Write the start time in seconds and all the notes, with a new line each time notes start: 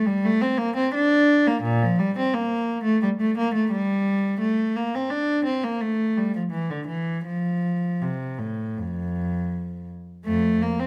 0.06 G3
0.25 A3
0.41 C4
0.58 A#3
0.76 C4
0.95 D4
1.47 A#3
1.63 A#2
1.82 F3
1.99 G3
2.18 C4
2.34 A#3
2.84 A3
3.02 G3
3.21 A3
3.38 A#3
3.55 A3
3.71 G3
4.40 A3
4.76 A#3
4.95 C4
5.10 D4
5.45 C4
5.64 A#3
5.81 A3
6.17 G3
6.35 F3
6.51 E3
6.70 D3
6.88 E3
7.26 F3
8.02 C3
8.39 A2
8.77 F2
10.25 F2 A3
10.62 A#3
10.79 C4